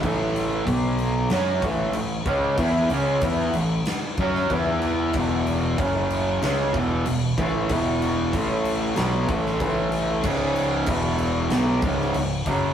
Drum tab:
CC |x-x-x-x-x-x-x-x-|x-x-x-x-x-x-x-x-|x-x-x-x-x-x-x-x-|x-x-x-x-x-x-x-x-|
SD |--------o-------|--------o--o----|--------o-------|--------o--o----|
BD |o---o-----o---o-|o---o-----o-o---|o---o-----o---o-|o---o-----o-o---|

CC |x-x-x-x-x-x-x-x-|
SD |--------o--o----|
BD |o---o-----o---o-|